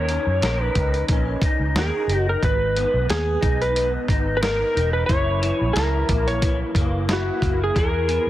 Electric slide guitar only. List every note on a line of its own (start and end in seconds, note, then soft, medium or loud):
0.00 0.64 C#5 medium
0.64 1.05 B4 medium
1.79 2.29 G#4 medium
2.29 2.44 A#4 medium
2.44 3.06 B4 medium
3.10 3.63 G#4 medium
3.62 3.92 B4 medium
4.37 4.43 B4 medium
4.43 4.91 A#4 medium
4.93 5.06 B4 medium
5.06 5.76 C#5 loud
5.73 6.28 A#4 medium
6.28 6.59 C#5 medium
7.13 7.59 F#4 medium
7.64 7.78 G#4 medium
7.78 8.30 A#4 loud